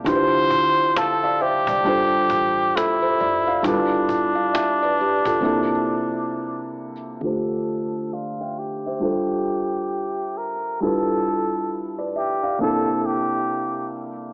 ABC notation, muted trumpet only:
X:1
M:4/4
L:1/8
Q:"Swing 16ths" 1/4=67
K:Gdor
V:1 name="Muted trumpet"
c2 A G3 E2 | D6- D z | A2 F G4 B | A2 z G A G2 z |]